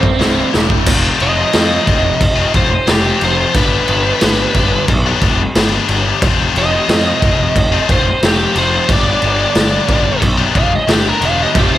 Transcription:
Already playing: C2 G2 C3 G3 C4 E4 C5
0.03 muted distorted electric guitar stroke, kick
0.19 C1 C2 G2 C3 G3 E4, snare
0.37 C3 G3 E4
0.53 E1 G2 C3 G3 E4, snare
0.69 C3 G3 E4, kick
0.86 F1 F2 C3 F3 A3 C4 F4, kick, crash
1.20 F1 D#5, crash
1.36 F3 A3 C4 F4
1.53 F2 C3 F3 A3 C4 F4, snare, crash
1.87 F1 F3 A3 C4 F4, kick, crash
2.03 muted distorted electric guitar stroke
2.21 F1, kick, crash
2.36 F3 A3 C4 F4
2.53 F1 F3 A3 C4 F4 C5, kick, crash
2.71 muted distorted electric guitar stroke
2.87 F1 F2 C3 F3 A3 C4 F4 G4, snare, crash
3.21 F1 C5, crash
3.37 F3 A3 C4 F4
3.54 G1 G2 D3 G3 B3 D4 G4 B4, kick, crash
3.88 G1, crash
4.05 G3 B3 D4 G4
4.21 G1 G2 D3 G3 B3 D4 G4, snare, crash
4.54 G1 G3 B3 D4 G4, kick, crash
4.73 muted distorted electric guitar stroke
4.88 B1, kick, crash
5.06 G3 B3 D4 G4
5.21 F1 G3 B3 D4 G4, kick, crash
5.40 muted distorted electric guitar stroke
5.55 G1 G2 D3 G3 B3 D4 G4, snare, crash
5.89 G1, crash
6.05 G3 B3 D4 G4
6.22 F1 F2 C3 F3 A3 C4 F4, kick, crash
6.55 F1 D#5, crash
6.72 F3 A3 C4 F4
6.88 F2 C3 F3 A3 C4 F4, snare, crash
7.22 F1 F3 A3 C4 F4, kick, crash
7.40 muted distorted electric guitar stroke
7.56 F1, kick, crash
7.72 F3 A3 C4 F4
7.89 F1 F3 A3 C4 F4 C5, kick, crash
8.06 muted distorted electric guitar stroke
8.23 F1 F2 C3 F3 A3 C4 F4 G4, snare, crash
8.55 F1 C5, crash
8.72 F3 A3 C4 F4
8.89 G1 G2 D3 G3 B3 D4 G4, kick, crash
8.93 D5
9.22 G1, crash
9.38 G3 B3 D4 G4
9.54 G1 G2 D3 G3 B3 D4 G4, snare, crash
9.88 G1 G3 B3 D4 G4, kick, crash
10.05 muted distorted electric guitar stroke
10.22 B1, kick, crash
10.38 G3 B3 D4 G4
10.55 F1 G3 B3 D4 G4 F5, kick, crash
10.71 muted distorted electric guitar stroke
10.76 D#5
10.88 G1 G2 D3 G3 B3 D4 G4, snare, crash
10.93 G4
11.08 A#4
11.21 E1 F5, crash
11.37 G3 B3 D4 G4
11.43 D#5
11.54 F1 F2 C3 F3 A3 C4 F4, kick, crash
11.59 G4
11.71 F3 A3 C4 F4 C5

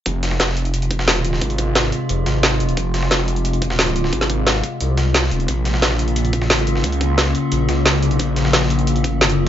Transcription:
0.06 F1 C3 G#3 F4, kick, closed hi-hat
0.23 snare, closed hi-hat
0.31 snare
0.40 snare, closed hi-hat
0.48 snare
0.57 closed hi-hat
0.65 closed hi-hat
0.74 closed hi-hat
0.82 closed hi-hat
0.91 kick, closed hi-hat
0.99 E1, snare
1.08 snare, open hi-hat
1.16 closed hi-hat
1.25 D#1, closed hi-hat
1.33 snare
1.41 G#1, kick, closed hi-hat
1.50 closed hi-hat
1.58 kick, closed hi-hat
1.75 snare, closed hi-hat
1.92 closed hi-hat
2.09 F1, closed hi-hat
2.26 G#1, snare, closed hi-hat
2.43 snare, closed hi-hat
2.60 closed hi-hat
2.69 closed hi-hat
2.77 F1, kick, closed hi-hat
2.94 snare, closed hi-hat
3.03 snare
3.11 snare, closed hi-hat
3.19 snare
3.28 closed hi-hat
3.36 closed hi-hat
3.45 closed hi-hat
3.53 closed hi-hat
3.62 kick, closed hi-hat
3.70 D#1, snare
3.79 snare, open hi-hat
3.87 closed hi-hat
3.96 closed hi-hat
4.04 snare
4.13 G#1, kick, closed hi-hat
4.21 snare, closed hi-hat
4.30 kick, closed hi-hat
4.47 snare, closed hi-hat
4.64 kick, closed hi-hat
4.81 C2, closed hi-hat
4.97 snare, closed hi-hat
5.14 snare, closed hi-hat
5.23 snare
5.31 D#1, closed hi-hat
5.40 closed hi-hat
5.48 A#1 C#3 A#3 F4, kick, closed hi-hat
5.65 snare, closed hi-hat
5.74 snare
5.82 snare, closed hi-hat
5.91 snare
5.99 closed hi-hat
6.08 closed hi-hat
6.16 closed hi-hat
6.25 closed hi-hat
6.33 kick, closed hi-hat
6.42 A1, snare
6.50 snare, open hi-hat
6.59 closed hi-hat
6.67 G#1, closed hi-hat
6.75 snare
6.84 C#2, kick, closed hi-hat
6.92 closed hi-hat
7.01 kick, closed hi-hat
7.18 snare, closed hi-hat
7.35 closed hi-hat
7.52 A#1, closed hi-hat
7.69 C#2, snare, closed hi-hat
7.86 snare, closed hi-hat
8.03 closed hi-hat
8.11 closed hi-hat
8.19 A#1, kick, closed hi-hat
8.36 snare, closed hi-hat
8.45 snare
8.53 snare, closed hi-hat
8.62 snare
8.70 closed hi-hat
8.79 closed hi-hat
8.87 closed hi-hat
8.96 closed hi-hat
9.04 kick, closed hi-hat
9.16 G#1
9.21 snare, closed hi-hat
9.30 closed hi-hat

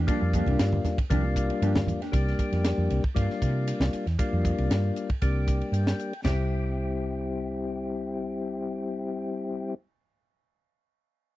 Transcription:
0.07 F3 G3 A#3 D4 F4 G4, kick, hi-hat pedal, ride
0.22 F2, muted clean electric guitar stroke
0.33 F3 A#3 D4 G4, kick, hi-hat pedal, ride
0.46 C2 A#3 D4 G4, ride, low conga
0.59 G2, muted clean electric guitar stroke, snare, hi-hat pedal, ride
0.73 high conga
0.85 muted clean electric guitar stroke, snare, hi-hat pedal, ride, low conga
0.98 muted fretless electric bass stroke, muted clean electric guitar stroke, kick, ride
1.10 C2 F3 G3 A#3 D4 F4 G4, kick, hi-hat pedal, ride, high conga
1.25 muted clean electric guitar stroke
1.36 muted clean electric guitar stroke, kick, hi-hat pedal, ride
1.50 muted clean electric guitar stroke, ride
1.62 G2 F3 A#3 D4 G4, hi-hat pedal, ride
1.75 muted clean electric guitar stroke, snare, high conga
1.87 hi-hat pedal, ride, low conga
2.02 A#3 D4 G4, snare, ride
2.12 C2 G3 A#3 D4 G4, kick, hi-hat pedal, ride
2.27 snare
2.39 kick, hi-hat pedal, ride
2.52 F2, snare, ride
2.65 snare, hi-hat pedal, ride
2.78 F2
2.90 C2, hi-hat pedal, ride
3.04 kick
3.14 G2 G3 A#3 D4 F4, kick, hi-hat pedal, ride
3.29 muted fretless electric bass stroke, snare
3.42 C3, kick, hi-hat pedal, ride
3.67 hi-hat pedal, ride
3.80 C2, snare
3.93 muted fretless electric bass stroke, hi-hat pedal, ride
4.06 E2, snare, ride
4.19 G3 A#3 D4 F4, kick, hi-hat pedal, ride
4.33 F2
4.45 kick, hi-hat pedal, ride
4.58 C2, ride
4.70 G2, snare, hi-hat pedal, ride
4.96 hi-hat pedal, ride
5.09 muted fretless electric bass stroke, kick, ride
5.22 C2 G3 A#3 D4 G4, kick, hi-hat pedal, ride
5.47 kick, hi-hat pedal, ride
5.61 ride
5.72 G2 G5, hi-hat pedal, ride
5.87 snare
5.99 hi-hat pedal, ride
6.13 ride
6.24 C2 G3 C4 E4 G4, snare, floor tom, crash

